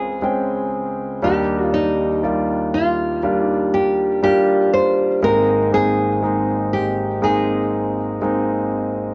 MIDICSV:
0, 0, Header, 1, 3, 480
1, 0, Start_track
1, 0, Key_signature, -3, "major"
1, 0, Tempo, 1000000
1, 590, Time_signature, 4, 2, 24, 8
1, 4388, End_track
2, 0, Start_track
2, 0, Title_t, "Nylon-string guitar"
2, 0, Program_c, 0, 24
2, 0, Note_on_c, 0, 68, 68
2, 333, Note_off_c, 0, 68, 0
2, 595, Note_on_c, 0, 67, 53
2, 834, Note_on_c, 0, 63, 65
2, 840, Note_off_c, 0, 67, 0
2, 1293, Note_off_c, 0, 63, 0
2, 1315, Note_on_c, 0, 65, 67
2, 1661, Note_off_c, 0, 65, 0
2, 1661, Note_on_c, 0, 63, 67
2, 1794, Note_on_c, 0, 67, 62
2, 1807, Note_off_c, 0, 63, 0
2, 2016, Note_off_c, 0, 67, 0
2, 2033, Note_on_c, 0, 67, 74
2, 2271, Note_off_c, 0, 67, 0
2, 2273, Note_on_c, 0, 72, 70
2, 2513, Note_off_c, 0, 72, 0
2, 2515, Note_on_c, 0, 70, 73
2, 2736, Note_off_c, 0, 70, 0
2, 2755, Note_on_c, 0, 68, 78
2, 3229, Note_off_c, 0, 68, 0
2, 3231, Note_on_c, 0, 67, 65
2, 3472, Note_off_c, 0, 67, 0
2, 3474, Note_on_c, 0, 68, 61
2, 4173, Note_off_c, 0, 68, 0
2, 4388, End_track
3, 0, Start_track
3, 0, Title_t, "Grand piano"
3, 0, Program_c, 1, 0
3, 0, Control_c, 1, 64, 127
3, 0, Note_on_c, 1, 37, 43
3, 0, Note_on_c, 1, 49, 43
3, 0, Note_on_c, 1, 56, 56
3, 0, Note_on_c, 1, 60, 49
3, 0, Note_on_c, 1, 61, 50
3, 0, Note_on_c, 1, 65, 56
3, 0, Note_on_c, 1, 68, 63
3, 84, Note_off_c, 1, 56, 0
3, 85, Note_off_c, 1, 60, 0
3, 86, Note_off_c, 1, 61, 0
3, 87, Note_off_c, 1, 68, 0
3, 106, Note_on_c, 1, 56, 52
3, 107, Note_on_c, 1, 60, 44
3, 110, Note_on_c, 1, 61, 45
3, 113, Note_on_c, 1, 79, 58
3, 564, Note_off_c, 1, 56, 0
3, 565, Note_off_c, 1, 60, 0
3, 566, Note_off_c, 1, 61, 0
3, 568, Note_off_c, 1, 79, 0
3, 570, Note_off_c, 1, 49, 0
3, 571, Note_off_c, 1, 37, 0
3, 587, Note_on_c, 1, 55, 68
3, 589, Note_on_c, 1, 58, 55
3, 591, Note_on_c, 1, 39, 43
3, 591, Note_on_c, 1, 51, 43
3, 592, Note_on_c, 1, 62, 62
3, 594, Note_on_c, 1, 63, 62
3, 595, Control_c, 1, 64, 0
3, 597, Note_off_c, 1, 65, 0
3, 670, Control_c, 1, 64, 127
3, 817, Note_off_c, 1, 55, 0
3, 818, Note_off_c, 1, 58, 0
3, 819, Note_off_c, 1, 62, 0
3, 820, Note_off_c, 1, 63, 0
3, 827, Note_on_c, 1, 55, 46
3, 829, Note_on_c, 1, 58, 43
3, 831, Note_on_c, 1, 74, 41
3, 834, Note_on_c, 1, 63, 53
3, 1057, Note_off_c, 1, 55, 0
3, 1058, Note_off_c, 1, 58, 0
3, 1058, Note_off_c, 1, 74, 0
3, 1060, Note_off_c, 1, 63, 0
3, 1069, Note_on_c, 1, 55, 53
3, 1071, Note_on_c, 1, 58, 47
3, 1073, Note_on_c, 1, 74, 50
3, 1077, Note_on_c, 1, 65, 55
3, 1526, Note_off_c, 1, 55, 0
3, 1527, Note_off_c, 1, 58, 0
3, 1527, Note_off_c, 1, 74, 0
3, 1530, Note_off_c, 1, 65, 0
3, 1550, Note_on_c, 1, 55, 59
3, 1552, Note_on_c, 1, 58, 52
3, 1555, Note_on_c, 1, 62, 49
3, 1557, Note_on_c, 1, 65, 59
3, 2006, Note_off_c, 1, 55, 0
3, 2007, Note_off_c, 1, 58, 0
3, 2009, Note_off_c, 1, 62, 0
3, 2010, Note_off_c, 1, 65, 0
3, 2028, Note_on_c, 1, 55, 57
3, 2031, Note_on_c, 1, 58, 45
3, 2032, Note_on_c, 1, 62, 50
3, 2034, Note_on_c, 1, 65, 61
3, 2485, Note_off_c, 1, 55, 0
3, 2487, Note_off_c, 1, 58, 0
3, 2487, Note_off_c, 1, 62, 0
3, 2488, Note_off_c, 1, 65, 0
3, 2491, Note_off_c, 1, 51, 0
3, 2492, Note_off_c, 1, 39, 0
3, 2508, Note_on_c, 1, 56, 68
3, 2510, Note_on_c, 1, 32, 42
3, 2511, Note_on_c, 1, 44, 42
3, 2511, Note_on_c, 1, 58, 53
3, 2513, Note_on_c, 1, 60, 53
3, 2515, Note_on_c, 1, 63, 69
3, 2517, Control_c, 1, 64, 0
3, 2588, Control_c, 1, 64, 127
3, 2737, Note_off_c, 1, 56, 0
3, 2739, Note_off_c, 1, 58, 0
3, 2740, Note_off_c, 1, 60, 0
3, 2741, Note_off_c, 1, 63, 0
3, 2748, Note_on_c, 1, 56, 49
3, 2749, Note_on_c, 1, 58, 47
3, 2753, Note_on_c, 1, 60, 44
3, 2755, Note_on_c, 1, 63, 56
3, 2977, Note_off_c, 1, 56, 0
3, 2978, Note_off_c, 1, 58, 0
3, 2980, Note_off_c, 1, 60, 0
3, 2981, Note_off_c, 1, 63, 0
3, 2988, Note_on_c, 1, 56, 51
3, 2989, Note_on_c, 1, 58, 45
3, 2992, Note_on_c, 1, 60, 46
3, 2995, Note_on_c, 1, 63, 59
3, 3445, Note_off_c, 1, 56, 0
3, 3446, Note_off_c, 1, 58, 0
3, 3447, Note_off_c, 1, 60, 0
3, 3449, Note_off_c, 1, 63, 0
3, 3466, Note_on_c, 1, 56, 61
3, 3468, Note_on_c, 1, 58, 51
3, 3470, Note_on_c, 1, 60, 55
3, 3472, Note_on_c, 1, 63, 65
3, 3924, Note_off_c, 1, 56, 0
3, 3925, Note_off_c, 1, 58, 0
3, 3926, Note_off_c, 1, 60, 0
3, 3927, Note_off_c, 1, 63, 0
3, 3944, Note_on_c, 1, 56, 57
3, 3946, Note_on_c, 1, 58, 51
3, 3948, Note_on_c, 1, 60, 52
3, 3951, Note_on_c, 1, 63, 58
3, 4388, Note_off_c, 1, 32, 0
3, 4388, Note_off_c, 1, 44, 0
3, 4388, Note_off_c, 1, 56, 0
3, 4388, Note_off_c, 1, 58, 0
3, 4388, Note_off_c, 1, 60, 0
3, 4388, Note_off_c, 1, 63, 0
3, 4388, End_track
0, 0, End_of_file